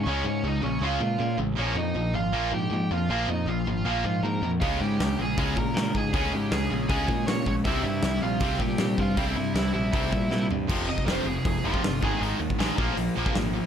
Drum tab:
CC |----------------|----------------|----------------|----------------|
HH |----------------|----------------|----------------|o---o---o---o---|
SD |----------------|----------------|----------------|----o-------o---|
FT |----------------|----------------|----------------|----------------|
BD |----------------|----------------|----------------|o-------o-o---o-|

CC |----------------|----------------|----------------|x---------------|
HH |o---o---o---o---|o---o---o---o---|o---o---o-------|----o---o---o---|
SD |----o-------o---|----o-------o---|----o-------o---|----o-------o---|
FT |----------------|----------------|--------------o-|----------------|
BD |o-------o-o---o-|o-------o-o---o-|o-------o-o-----|o--o----o--o--o-|

CC |----------------|
HH |o---o---o---o---|
SD |----o-------o---|
FT |----------------|
BD |---o--o----o----|